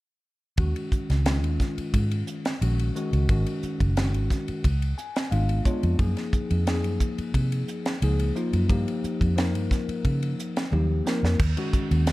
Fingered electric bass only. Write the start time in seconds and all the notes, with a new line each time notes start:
0.58 D#2
0.92 muted fingered electric bass stroke
1.10 C#2
1.43 D#2
1.78 muted fingered electric bass stroke
1.94 G#2
2.61 A#1
3.13 C#2
3.29 G#1
3.63 muted fingered electric bass stroke
3.80 F#1
4.15 G#1
4.49 muted fingered electric bass stroke
4.65 C#2
5.32 G#1
5.83 F2
5.99 F#2
6.33 muted fingered electric bass stroke
6.51 F2
6.85 F#2
7.18 muted fingered electric bass stroke
7.34 C3
8.02 C#2
8.53 F#2
8.70 G2
9.04 muted fingered electric bass stroke
9.21 F2
9.55 G2
9.89 muted fingered electric bass stroke
10.05 C#3
10.72 D#2
11.23 F2
11.40 D#2
11.74 muted fingered electric bass stroke
11.91 D#2